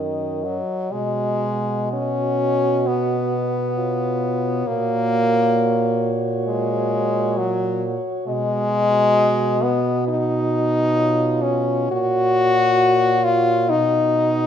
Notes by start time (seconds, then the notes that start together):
Already playing: F#2 D#3 A#4 D#5
0.45 F#3
0.91 B2 G#3 F#4
1.93 C#4
2.87 B3
3.77 F4 C#5
4.67 A#2 A#3 F#4
6.46 G#3
7.38 F#3
8.27 B2 G#3 D#5
9.63 B3
10.08 D#4
10.95 F4 C#5
11.42 C#4
11.90 A#2 F#4
13.24 F4
13.68 B2 D#4 D#5